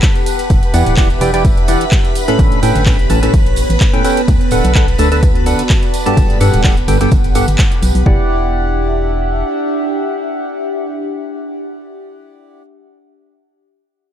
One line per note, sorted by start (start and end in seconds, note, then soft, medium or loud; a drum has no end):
0.00 1.26 B3 medium
0.00 4.28 G4 loud
0.00 0.49 B4 medium
0.00 3.15 F#5 medium
0.00 1.26 A5 loud
0.00 0.49 B5 medium
0.00 kick loud
0.00 clap loud
0.00 closed hi-hat medium
0.00 tambourine medium
0.15 closed hi-hat soft
0.15 tambourine soft
0.26 open hi-hat loud
0.26 tambourine loud
0.39 closed hi-hat medium
0.39 tambourine soft
0.50 0.60 E1 loud
0.50 2.39 D4 medium
0.50 8.07 B4 medium
0.50 8.07 B5 medium
0.50 kick loud
0.50 closed hi-hat medium
0.50 tambourine medium
0.63 closed hi-hat soft
0.63 tambourine soft
0.74 0.84 E2 loud
0.74 0.95 E3 medium
0.74 0.95 E4 medium
0.74 0.95 G4 medium
0.74 0.95 D5 medium
0.74 0.95 F#5 medium
0.74 open hi-hat loud
0.74 tambourine loud
0.80 3.15 E5 loud
0.86 1.17 D1 medium
0.86 closed hi-hat medium
0.86 tambourine soft
0.97 1.08 E3 loud
0.97 1.08 E4 medium
0.97 1.08 G4 medium
0.97 1.08 D5 medium
0.97 1.08 F#5 loud
0.97 kick loud
0.97 clap loud
0.97 closed hi-hat medium
0.97 tambourine medium
1.10 closed hi-hat soft
1.10 tambourine soft
1.21 1.76 E1 medium
1.21 1.31 E3 loud
1.21 1.31 E4 medium
1.21 1.31 G4 medium
1.21 1.31 D5 medium
1.21 1.31 G5 loud
1.21 open hi-hat loud
1.21 tambourine medium
1.34 1.43 E3 medium
1.34 1.43 E4 medium
1.34 1.43 G4 medium
1.34 1.43 D5 medium
1.34 1.43 G5 medium
1.34 closed hi-hat medium
1.34 tambourine soft
1.45 kick loud
1.45 closed hi-hat medium
1.45 tambourine soft
1.57 closed hi-hat soft
1.57 tambourine soft
1.68 1.85 E3 medium
1.68 1.85 E4 medium
1.68 1.85 G4 medium
1.68 1.85 D5 medium
1.68 1.85 F#5 medium
1.68 open hi-hat loud
1.68 tambourine loud
1.81 closed hi-hat medium
1.81 tambourine soft
1.91 kick loud
1.91 clap loud
1.91 closed hi-hat medium
1.91 tambourine soft
2.05 closed hi-hat soft
2.05 tambourine soft
2.15 open hi-hat loud
2.15 tambourine medium
2.28 2.60 A2 loud
2.28 2.60 C#4 medium
2.28 2.60 A4 medium
2.28 2.60 B4 medium
2.28 2.60 B5 loud
2.28 closed hi-hat medium
2.28 tambourine soft
2.39 2.49 A1 loud
2.39 8.06 B3 medium
2.39 kick loud
2.39 closed hi-hat medium
2.39 tambourine medium
2.51 closed hi-hat soft
2.51 tambourine soft
2.63 2.73 A2 loud
2.63 2.84 A2 medium
2.63 2.84 C#4 medium
2.63 2.84 A4 medium
2.63 2.84 B4 medium
2.63 2.84 G5 loud
2.63 open hi-hat loud
2.63 tambourine medium
2.75 3.06 G1 medium
2.75 4.28 C#5 medium
2.75 8.06 A5 medium
2.75 closed hi-hat medium
2.75 tambourine soft
2.86 2.97 A2 medium
2.86 2.97 C#4 medium
2.86 2.97 B4 medium
2.86 2.97 G5 medium
2.86 kick loud
2.86 clap loud
2.86 closed hi-hat medium
2.86 tambourine medium
2.99 closed hi-hat soft
2.99 tambourine soft
3.10 3.29 A1 medium
3.10 3.20 A2 medium
3.10 3.20 C#4 medium
3.10 3.20 A4 medium
3.10 3.20 B4 medium
3.10 3.20 A5 medium
3.10 open hi-hat loud
3.10 tambourine medium
3.23 3.32 A2 medium
3.23 3.32 C#4 medium
3.23 3.32 A4 medium
3.23 3.32 B4 medium
3.23 3.32 A5 medium
3.23 closed hi-hat medium
3.23 tambourine soft
3.33 3.65 A1 medium
3.33 kick loud
3.33 closed hi-hat medium
3.33 tambourine medium
3.46 closed hi-hat soft
3.46 tambourine soft
3.56 open hi-hat loud
3.56 tambourine medium
3.70 3.78 A1 medium
3.70 closed hi-hat medium
3.70 tambourine soft
3.80 kick loud
3.80 clap loud
3.80 closed hi-hat medium
3.80 tambourine soft
3.93 4.03 A2 medium
3.93 4.03 C#4 medium
3.93 4.03 A4 medium
3.93 4.03 B4 medium
3.93 4.03 G5 medium
3.93 closed hi-hat soft
3.93 tambourine soft
4.04 4.21 C#4 loud
4.04 4.21 A4 medium
4.04 4.21 B4 medium
4.04 4.21 G5 loud
4.04 open hi-hat loud
4.04 tambourine medium
4.17 closed hi-hat medium
4.17 tambourine soft
4.28 4.38 D2 loud
4.28 kick loud
4.28 closed hi-hat medium
4.28 tambourine soft
4.41 closed hi-hat soft
4.41 tambourine soft
4.51 4.62 D1 loud
4.51 4.73 D3 medium
4.51 4.73 D4 medium
4.51 4.73 A4 medium
4.51 4.73 B4 medium
4.51 4.73 F#5 medium
4.51 open hi-hat loud
4.51 tambourine medium
4.64 4.95 B1 loud
4.64 6.17 F#4 medium
4.64 closed hi-hat medium
4.64 tambourine soft
4.75 4.86 D3 loud
4.75 4.86 D4 medium
4.75 4.86 A4 medium
4.75 4.86 B4 medium
4.75 4.86 F#5 loud
4.75 kick loud
4.75 clap loud
4.75 closed hi-hat medium
4.75 tambourine soft
4.88 closed hi-hat soft
4.88 tambourine soft
4.98 5.54 D2 medium
4.98 5.09 D3 loud
4.98 5.09 D4 medium
4.98 5.09 A4 medium
4.98 5.09 B4 medium
4.98 5.09 A5 loud
4.98 open hi-hat loud
4.98 tambourine medium
5.12 5.21 D3 medium
5.12 5.21 D4 medium
5.12 5.21 A4 medium
5.12 5.21 B4 medium
5.12 6.93 D5 medium
5.12 5.21 A5 medium
5.12 closed hi-hat medium
5.12 tambourine soft
5.23 kick loud
5.23 closed hi-hat medium
5.23 tambourine soft
5.35 closed hi-hat soft
5.35 tambourine soft
5.46 5.63 D3 medium
5.46 5.63 D4 medium
5.46 5.63 A4 medium
5.46 5.63 B4 medium
5.46 5.63 F#5 medium
5.46 open hi-hat loud
5.46 tambourine medium
5.59 closed hi-hat medium
5.59 tambourine soft
5.69 kick loud
5.69 clap loud
5.69 closed hi-hat medium
5.69 tambourine soft
5.82 closed hi-hat soft
5.82 tambourine soft
5.94 open hi-hat loud
5.94 tambourine medium
6.06 6.38 G2 loud
6.06 6.38 B3 medium
6.06 6.38 G4 medium
6.06 6.38 A4 medium
6.06 6.38 A5 loud
6.06 closed hi-hat medium
6.06 tambourine soft
6.17 6.27 G1 loud
6.17 kick loud
6.17 closed hi-hat medium
6.17 tambourine medium
6.30 8.06 F#5 medium
6.30 closed hi-hat soft
6.30 tambourine soft
6.40 6.62 G2 medium
6.40 6.51 G2 loud
6.40 6.62 B3 medium
6.40 6.62 G4 medium
6.40 6.62 A4 medium
6.40 6.62 F#5 loud
6.40 open hi-hat loud
6.40 tambourine medium
6.53 6.84 D1 medium
6.53 closed hi-hat medium
6.53 tambourine soft
6.63 6.75 G2 medium
6.63 6.75 B3 medium
6.63 8.06 G4 medium
6.63 6.75 G4 medium
6.63 6.75 A4 medium
6.63 6.75 F#5 medium
6.63 kick loud
6.63 clap loud
6.63 closed hi-hat medium
6.63 tambourine medium
6.77 closed hi-hat soft
6.77 tambourine soft
6.88 7.07 G1 medium
6.88 6.98 G2 medium
6.88 6.98 B3 medium
6.88 6.98 G4 medium
6.88 6.98 A4 medium
6.88 6.98 G5 medium
6.88 open hi-hat loud
6.88 tambourine medium
7.01 7.10 G2 medium
7.01 7.10 B3 medium
7.01 7.10 G4 medium
7.01 7.10 A4 medium
7.01 7.10 G5 medium
7.01 closed hi-hat medium
7.01 tambourine soft
7.11 7.43 G1 loud
7.11 kick loud
7.11 closed hi-hat medium
7.11 tambourine medium
7.24 closed hi-hat soft
7.24 tambourine soft
7.35 7.46 G2 medium
7.35 7.46 B3 medium
7.35 7.46 G4 medium
7.35 7.46 A4 medium
7.35 7.46 F#5 loud
7.35 open hi-hat loud
7.35 tambourine medium
7.48 7.56 G1 medium
7.48 closed hi-hat medium
7.48 tambourine soft
7.58 kick loud
7.58 clap loud
7.58 closed hi-hat medium
7.58 tambourine medium
7.71 closed hi-hat soft
7.71 tambourine soft
7.82 7.92 B1 loud
7.82 open hi-hat loud
7.82 tambourine medium
7.95 8.04 B1 loud
7.95 open hi-hat medium
7.95 tambourine soft
8.06 9.44 E1 loud
8.06 12.60 D4 medium
8.06 12.62 E4 medium
8.06 12.62 G4 medium
8.06 12.62 D5 medium
8.06 12.62 F#5 medium
8.06 kick loud
8.14 12.60 G4 medium
8.21 12.60 E5 medium
8.28 12.60 F#5 medium